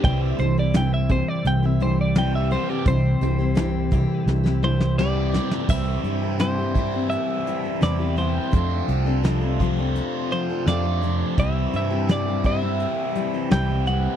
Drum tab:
CC |----------------|----------------|x---------------|----------------|
HH |x-x-x-x-x-x-x-x-|x-x-x-x---------|--x-x-x-x-x-x-x-|x-x-x-x-x-x-x-x-|
SD |----o-------o---|----o---oo-oo-oo|----o-------o---|----o-------o---|
BD |o-----o---------|o-----o---------|o-----o---------|o-----o---------|

CC |----------------|
HH |x-x-x-x-x-x-x-x-|
SD |----o-------o---|
BD |o-----o---------|